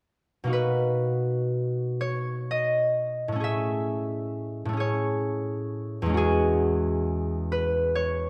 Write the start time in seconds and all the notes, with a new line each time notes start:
0.44 B2 A#3 D#4
0.49 F#4 B4
2.01 C#5
2.51 D#5
3.28 A2
3.32 A3 C#4
3.40 G#4 E5
4.65 A2 A3
4.73 C#4 G#4
4.80 C#5
6.02 E2 G#3
6.09 C#4
6.14 F#4 G#4
7.52 B4
7.95 C#5